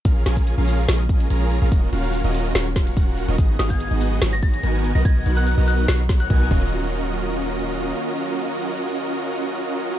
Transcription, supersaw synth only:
X:1
M:4/4
L:1/16
Q:1/4=144
K:Ebm
V:1 name="Supersaw synth"
[DFABf]2 [DFABa]3 [DFABf]3 [DFABe]4 [DFABb]3 [DFABf] | [DFGBe]2 [DFGBf]3 [DFGBe]3 [DFGBd]4 [DFGBg]3 [DFGBe] | [CEGAe]2 [CEGAf]3 [CEGAe]3 [CEGAd]4 [CEGBa]3 [=B,^D^F^A^d] | [=B,^D^F^A^d]2 [B,DFA^f]3 [B,DFAd]3 [B,DFA_d]4 [B,^DFA_a]2 [_D=FG_Be]2- |
[DFGBe]16- | [DFGBe]16 |]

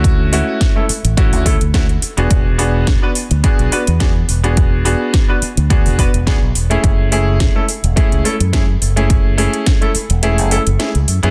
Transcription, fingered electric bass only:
X:1
M:4/4
L:1/16
Q:"Swing 16ths" 1/4=106
K:F#m
V:1 name="Fingered electric bass" clef=bass
D,,3 z4 A,,,2 D,, D,, D,,3 z E,,, | z6 z D,, z B,,, z E,,3 E,,,2- | E,,,3 z4 D,,2 E,,, z E,,, D,, B,,, E,,, z | F,,,4- F,,, z2 E,,, z C,, z F,,3 F,,,2- |
F,,,3 z4 E,,,2 F,,, z F,,, z C,, F,, F,, |]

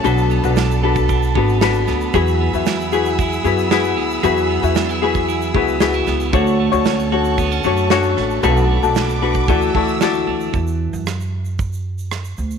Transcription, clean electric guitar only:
X:1
M:4/4
L:1/16
Q:1/4=114
K:Emix
V:1 name="Clean electric guitar"
[F,A]2 B,2 D2 A2 D2 B,2 D2 B,2 | [F,G]2 B,2 E2 G2 E2 B,2 E2 B,2 | [F,G]2 B,2 D E G2 E2 B,2 D E B,2 | [A,F]2 A,2 C2 F2 B, C A,2 C2 A,2 |
[A,F]2 A,2 D2 F2 E,2 A,2 D2 A,2 | z16 |]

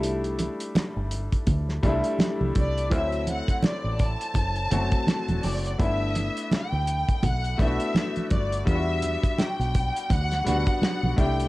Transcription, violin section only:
X:1
M:4/4
L:1/8
Q:"Swing 16ths" 1/4=83
K:Em
V:1 name="Violin section"
z6 z d | e f d a4 d | e2 g2 f e2 d | e2 g2 f f2 g |]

